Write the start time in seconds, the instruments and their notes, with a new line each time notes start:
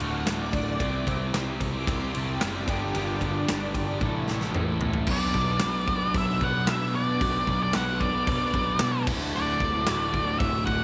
Already playing: overdriven electric guitar D2 A2 D3 A3 F#4
0.00 picked electric bass D1, distorted electric guitar A2 D3 A3 F#4, string machine F#5, ride
0.26 picked electric bass D1, distorted electric guitar D2 A2 D3 A3 F#4, string machine D5, snare, ride
0.40 distorted electric guitar D3 A3 F#4
0.53 picked electric bass D1, distorted electric guitar A2 D3 A3 F#4, kick, ride
0.79 picked electric bass C2, overdriven electric guitar C3 G3 C4 E4 G4 C5, distorted electric guitar C3 G3 C4 E4 G4 C5, kick, ride
1.07 picked electric bass C2, distorted electric guitar C4 E4 G4 C5, kick, ride
1.33 picked electric bass C2, distorted electric guitar C3 G3 C4 E4 G4 C5, snare, ride
1.47 distorted electric guitar C4 E4 G4 C5
1.60 picked electric bass C2, muted distorted electric guitar stroke, kick, ride
1.71 distorted electric guitar E4 G4 C5, string machine D6
1.75 distorted electric guitar C4
1.87 picked electric bass C2, overdriven electric guitar C3 G3 C4 E4 G4 C5, string machine C6, kick, ride
2.00 distorted electric guitar C4 E4 G4 C5
2.08 string machine A5
2.12 picked electric bass C2, distorted electric guitar C4 E4 G4 C5, ride
2.25 string machine G5
2.40 picked electric bass F#1, distorted electric guitar C3 G3 C4 E4 G4 C5, snare, ride
2.44 string machine D5
2.52 distorted electric guitar C4 E4 G4 C5
2.59 string machine A4
2.66 picked electric bass G1, overdriven electric guitar G2 D3 G3 B3 D4 G4, distorted electric guitar G2 D3 G3 B3 D4 G4, kick, ride
2.80 string machine G4
2.94 picked electric bass G1, distorted electric guitar G2 D3 G3 B3 D4 G4, string machine F4, ride
3.12 string machine D4
3.20 picked electric bass G1, distorted electric guitar G3 B3 D4 G4, kick, ride
3.30 string machine D4
3.45 distorted electric guitar G2 D3 G3 B3 D4 G4, snare, ride
3.50 picked electric bass G1
3.60 distorted electric guitar G3 B3 D4 G4
3.74 picked electric bass G1, overdriven electric guitar G2 D3 G3 B3 D4 G4, muted distorted electric guitar stroke, kick, ride
3.88 distorted electric guitar G3 B3 D4 G4
4.00 picked electric bass A1, overdriven electric guitar A2 E3 A3 C#4 E4 A4, distorted electric guitar A2 E3 A3 C#4 E4 A4, kick, high tom
4.15 distorted electric guitar A3 C#4 E4 A4
4.27 picked electric bass A1, distorted electric guitar A3 C#4 E4 A4, snare
4.41 snare
4.53 picked electric bass A1, distorted electric guitar A2 E3 A3 C#4 E4 A4, mid tom
4.68 distorted electric guitar A3 C#4 E4 A4
4.81 picked electric bass A1, distorted electric guitar A3 C#4 E4 A4, floor tom
4.93 floor tom
5.07 picked electric bass B1, overdriven electric guitar B2 F#3 B3 D4 F#4, distorted electric guitar B2 F#3, string machine D4 F#4 B4 D5, kick, crash
5.11 distorted electric guitar B3, overdriven electric guitar B4, lead electric guitar D5
5.34 picked electric bass B1, muted overdriven electric guitar stroke, kick
5.60 overdriven electric guitar B2 F#3 B3 D4 F#4, snare, open hi-hat
5.64 picked electric bass B1, overdriven electric guitar B4
5.74 overdriven electric guitar B3 D4 F#4 B4
5.88 overdriven electric guitar B3 D4 F#4 B4, kick
6.03 overdriven electric guitar B3 D4 F#4 B4
6.14 picked electric bass B1, lead electric guitar E5, kick, open hi-hat
6.29 overdriven electric guitar B3 D4 F#4 B4
6.41 picked electric bass B1, overdriven electric guitar B3 D4 F#4, lead electric guitar F#5, kick
6.45 overdriven electric guitar B4
6.67 overdriven electric guitar B2 F#3 B3 D4 F#4 B4, picked electric bass B2, lead electric guitar E5, snare, open hi-hat
6.82 overdriven electric guitar B3 D4 F#4 B4
6.94 overdriven electric guitar B3 D4 F#4 B4, lead electric guitar D5
7.08 overdriven electric guitar B3 D4 F#4 B4
7.21 picked electric bass B1, overdriven electric guitar B2 F#3 B3 D4 F#4 B4, distorted electric guitar B2 F#3 B3, kick, open hi-hat
7.47 picked electric bass B1, muted overdriven electric guitar stroke, kick
7.63 lead electric guitar D5
7.73 picked electric bass B1, overdriven electric guitar B2 F#3 B3 D4 F#4 B4, lead electric guitar F#5, snare, open hi-hat
7.90 overdriven electric guitar B3 D4 F#4 B4
8.00 overdriven electric guitar B3 D4 F#4, lead electric guitar D5, kick
8.05 overdriven electric guitar B4
8.15 overdriven electric guitar B3 D4 F#4 B4
8.27 picked electric bass B1, kick, open hi-hat
8.42 overdriven electric guitar B3 D4 F#4 B4
8.54 picked electric bass B1, overdriven electric guitar B3 D4 F#4 B4, kick
8.79 picked electric bass B2, overdriven electric guitar B2 F#3 B3, snare, open hi-hat
8.83 overdriven electric guitar D4 F#4 B4
8.95 overdriven electric guitar B3 D4 F#4 B4
9.06 picked electric bass D1, overdriven electric guitar D2 A2 D3 A3 F#4, distorted electric guitar D2 A2, kick, crash
9.10 distorted electric guitar D3, string machine D4 F#4 A4 D5
9.21 overdriven electric guitar D3 A3 F#4
9.34 picked electric bass D1, overdriven electric guitar D2 A2 D3 A3 F#4, lead electric guitar D5
9.60 picked electric bass D1, muted overdriven electric guitar stroke, kick
9.87 picked electric bass D1, overdriven electric guitar D2 A2 D3 A3 F#4, snare, open hi-hat
10.01 overdriven electric guitar D3 A3 F#4
10.13 overdriven electric guitar A2 D3 A3 F#4, kick
10.26 overdriven electric guitar D3 A3 F#4
10.39 picked electric bass D1, lead electric guitar E5, kick, open hi-hat
10.54 overdriven electric guitar D3 A3 F#4
10.66 picked electric bass D1, overdriven electric guitar A2 D3, lead electric guitar F#5, kick
10.70 overdriven electric guitar A3 F#4